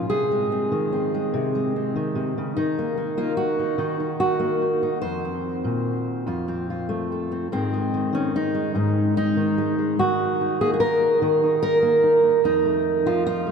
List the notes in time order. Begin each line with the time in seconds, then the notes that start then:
0.10 C3 G#4
0.32 G#3
0.52 C4
0.72 D#3
0.93 C4
1.14 G#3
1.34 C3
1.55 G#3
1.76 C4
1.96 D#3
2.15 C3
2.38 C#3
2.57 D#3 D#4
2.79 A#3
2.97 A#3
3.17 A#3 F4
3.37 F#4
3.59 D#4
3.78 D#3 D#4
4.00 D#4
4.20 F#4
4.39 A#3
4.62 D#4
4.83 D#4
5.02 F2 C5
5.25 C4
5.64 A#2
6.27 F2 F4
6.48 C4
6.70 F4
6.89 A3
7.12 A4
7.32 C4
7.52 G#2 D#3 G#3 C4
7.74 G#3
7.94 D#3
8.13 D#3 C#4
8.36 D#4
8.55 G#3
8.75 G#2 G#3
9.17 D#4
9.37 D#3
9.58 G#3
9.78 G#3
9.99 D#3 F#4
10.41 D#4
10.61 A#3 G#4
10.73 G#4
10.80 A#4
11.22 D#3 D#4
11.43 D#4
11.63 A#4
11.82 A#3
12.03 D#4
12.23 D#4
12.44 F2 D#4
12.65 A3
13.06 F3 F4
13.27 F4
13.47 A3